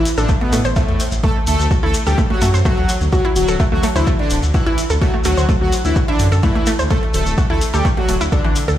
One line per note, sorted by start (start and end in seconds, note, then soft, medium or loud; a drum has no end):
0.05 open hi-hat loud
0.05 shekere medium
0.18 0.25 A1 medium
0.18 0.30 D3 medium
0.18 0.30 D4 medium
0.18 0.26 A4 medium
0.18 closed hi-hat soft
0.18 shekere medium
0.29 0.38 A3 loud
0.29 kick loud
0.29 closed hi-hat soft
0.29 shekere soft
0.41 0.60 B2 loud
0.41 0.46 A3 medium
0.41 0.60 B3 medium
0.41 closed hi-hat soft
0.53 0.61 A2 medium
0.53 0.64 A3 loud
0.53 open hi-hat loud
0.53 shekere medium
0.65 0.72 A1 medium
0.65 0.70 C5 medium
0.65 closed hi-hat soft
0.65 shekere medium
0.76 1.01 A2 loud
0.76 0.85 A3 loud
0.76 1.01 A3 medium
0.76 kick loud
0.76 closed hi-hat soft
0.76 shekere soft
0.89 0.96 E2 medium
0.89 closed hi-hat soft
1.00 open hi-hat loud
1.00 shekere medium
1.12 1.20 A1 medium
1.12 closed hi-hat soft
1.12 shekere medium
1.23 1.32 A3 loud
1.23 1.36 A3 medium
1.23 1.36 A4 loud
1.23 kick loud
1.23 closed hi-hat soft
1.23 shekere soft
1.47 1.55 D2 loud
1.47 1.66 A3 loud
1.47 1.66 A4 loud
1.47 open hi-hat loud
1.47 shekere medium
1.59 1.67 D2 medium
1.59 closed hi-hat soft
1.59 shekere medium
1.71 1.82 F#4 medium
1.71 kick loud
1.71 closed hi-hat soft
1.71 shekere soft
1.83 1.91 D2 medium
1.83 1.95 A3 medium
1.83 1.91 E4 loud
1.83 1.95 A4 medium
1.94 open hi-hat loud
1.94 shekere medium
2.07 2.14 D2 medium
2.07 2.19 G3 medium
2.07 2.19 G4 medium
2.07 2.15 A4 medium
2.07 closed hi-hat soft
2.07 shekere soft
2.18 2.27 A3 loud
2.18 kick loud
2.18 closed hi-hat soft
2.18 shekere soft
2.30 2.49 F#3 loud
2.30 2.35 A3 medium
2.30 2.49 F#4 medium
2.30 closed hi-hat soft
2.41 2.50 F#2 medium
2.41 2.53 A3 loud
2.41 open hi-hat loud
2.41 shekere loud
2.54 2.61 F#2 medium
2.54 2.59 C5 medium
2.54 closed hi-hat soft
2.54 shekere medium
2.65 2.90 F#3 loud
2.65 2.74 A3 loud
2.65 2.90 F#4 loud
2.65 kick loud
2.65 closed hi-hat soft
2.65 shekere soft
2.77 2.85 D2 medium
2.77 closed hi-hat soft
2.89 open hi-hat loud
2.89 shekere loud
3.01 3.09 D2 medium
3.01 closed hi-hat soft
3.01 shekere medium
3.12 3.25 F#3 medium
3.12 3.25 F#4 loud
3.12 3.24 F#4 medium
3.12 kick loud
3.12 closed hi-hat soft
3.12 shekere soft
3.25 3.33 E4 loud
3.36 3.44 D1 loud
3.36 3.55 F#3 medium
3.36 3.55 F#4 loud
3.36 open hi-hat loud
3.36 shekere medium
3.48 3.56 D1 medium
3.48 3.57 A4 medium
3.48 closed hi-hat soft
3.48 shekere medium
3.60 3.69 A3 loud
3.60 kick loud
3.60 closed hi-hat soft
3.60 shekere soft
3.72 3.79 D2 medium
3.72 3.84 F#3 medium
3.72 3.77 A3 medium
3.72 3.84 F#4 medium
3.83 3.95 A3 loud
3.83 open hi-hat loud
3.83 shekere medium
3.96 4.03 D2 medium
3.96 4.08 E3 medium
3.96 4.08 E4 medium
3.96 4.01 C5 medium
3.96 closed hi-hat soft
3.96 shekere soft
4.07 4.16 A3 loud
4.07 kick loud
4.07 closed hi-hat soft
4.07 shekere soft
4.19 4.38 D3 loud
4.19 4.38 D4 loud
4.19 closed hi-hat soft
4.30 4.39 D1 medium
4.30 open hi-hat medium
4.30 shekere medium
4.43 4.50 D2 medium
4.43 closed hi-hat soft
4.43 shekere soft
4.54 4.79 E3 loud
4.54 4.79 E4 medium
4.54 4.66 F#4 medium
4.54 kick loud
4.54 closed hi-hat soft
4.54 shekere soft
4.67 4.74 A1 medium
4.67 4.75 E4 loud
4.67 closed hi-hat soft
4.78 open hi-hat loud
4.78 shekere medium
4.90 4.98 D2 medium
4.90 4.98 A4 medium
4.90 closed hi-hat soft
4.90 shekere medium
5.01 5.14 F#3 loud
5.01 5.10 A3 loud
5.01 5.14 F#4 loud
5.01 kick loud
5.01 closed hi-hat soft
5.01 shekere soft
5.14 5.19 A3 medium
5.24 5.33 D2 medium
5.24 5.44 F#3 loud
5.24 5.37 A3 loud
5.24 5.44 F#4 loud
5.24 open hi-hat loud
5.24 shekere medium
5.37 5.45 D2 medium
5.37 5.42 C5 medium
5.37 closed hi-hat soft
5.37 shekere medium
5.49 5.58 A3 loud
5.49 kick loud
5.49 closed hi-hat soft
5.49 shekere soft
5.61 5.69 D2 medium
5.61 5.73 F#3 medium
5.61 5.73 F#4 medium
5.72 open hi-hat loud
5.72 shekere medium
5.85 5.92 D2 medium
5.85 5.97 E3 medium
5.85 5.97 E4 loud
5.85 closed hi-hat soft
5.85 shekere soft
5.96 6.08 F#4 medium
5.96 kick loud
5.96 closed hi-hat soft
5.96 shekere soft
6.08 6.27 D3 loud
6.08 6.27 D4 loud
6.08 6.16 E4 loud
6.08 closed hi-hat soft
6.19 6.28 F#2 medium
6.19 open hi-hat loud
6.19 shekere medium
6.32 6.39 F#2 medium
6.32 6.40 A4 medium
6.32 closed hi-hat soft
6.32 shekere medium
6.43 6.68 E3 medium
6.43 6.52 A3 loud
6.43 6.68 E4 medium
6.43 kick loud
6.43 closed hi-hat soft
6.43 shekere soft
6.56 6.63 D2 medium
6.56 6.60 A3 medium
6.56 closed hi-hat soft
6.66 6.79 A3 loud
6.66 open hi-hat loud
6.66 shekere medium
6.79 6.87 D2 medium
6.79 6.84 C5 medium
6.79 closed hi-hat soft
6.79 shekere soft
6.90 7.03 A3 loud
6.90 6.99 A3 loud
6.90 7.03 A4 loud
6.90 kick loud
6.90 closed hi-hat soft
6.90 shekere soft
7.03 closed hi-hat soft
7.14 7.22 D1 medium
7.14 7.33 A3 medium
7.14 7.33 A4 loud
7.14 open hi-hat loud
7.14 shekere medium
7.26 7.34 D1 medium
7.26 closed hi-hat soft
7.26 shekere medium
7.38 7.49 F#4 medium
7.38 kick loud
7.38 closed hi-hat soft
7.38 shekere soft
7.50 7.57 D2 medium
7.50 7.62 A3 medium
7.50 7.58 E4 loud
7.50 7.62 A4 medium
7.61 open hi-hat loud
7.61 shekere medium
7.74 7.81 D2 medium
7.74 7.86 G3 medium
7.74 7.86 G4 medium
7.74 7.82 A4 medium
7.74 closed hi-hat soft
7.74 shekere soft
7.85 7.94 A3 loud
7.85 kick loud
7.85 closed hi-hat soft
7.85 shekere soft
7.97 8.16 F#3 loud
7.97 8.02 A3 medium
7.97 8.16 F#4 loud
7.97 closed hi-hat soft
8.08 8.17 D1 medium
8.08 8.17 A3 medium
8.08 open hi-hat loud
8.08 shekere medium
8.21 8.28 D2 medium
8.21 8.29 E4 loud
8.21 closed hi-hat soft
8.21 shekere medium
8.32 8.57 D3 medium
8.32 8.57 D4 medium
8.32 8.44 A4 loud
8.32 kick loud
8.32 closed hi-hat soft
8.32 shekere soft
8.44 8.52 A1 medium
8.44 8.53 E3 loud
8.44 closed hi-hat soft
8.56 open hi-hat loud
8.56 shekere medium
8.68 8.76 D2 medium
8.68 8.73 A4 medium
8.68 closed hi-hat soft
8.68 shekere soft